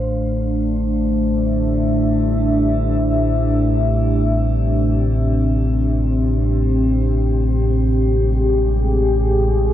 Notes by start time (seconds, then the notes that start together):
Already playing: A1 A2 A3 D4 G4 C5
0.29 E5
1.93 C4
7.15 G#4
8.89 F5